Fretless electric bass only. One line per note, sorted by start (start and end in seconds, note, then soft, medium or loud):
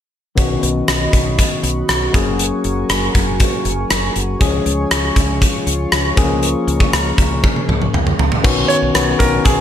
0.38 0.56 B1 medium
0.63 0.81 B1 medium
0.88 1.06 B1 medium
1.13 1.40 B1 medium
1.63 1.82 B1 medium
1.89 2.07 B1 medium
2.14 2.50 F#1 medium
2.65 2.83 F#1 medium
2.89 3.08 F#1 medium
3.15 3.42 F#1 medium
3.65 3.83 F#1 medium
3.90 4.09 F#1 medium
4.16 4.34 F#1 medium
4.41 4.59 C#2 medium
4.66 4.84 C#2 medium
4.91 5.09 C#2 medium
5.16 5.44 C#2 medium
5.67 5.85 C#2 medium
5.92 6.10 C#2 medium
6.17 6.54 C#2 medium
6.67 6.86 C#2 medium
6.93 7.11 C#2 medium
7.18 7.45 C#2 medium
7.68 7.87 C#2 medium
7.93 8.12 C#2 medium
8.19 8.37 C#2 medium
8.44 8.63 B1 loud
8.82 8.91 B1 medium
8.95 9.13 B1 medium
9.20 9.38 B1 medium
9.45 9.61 B1 loud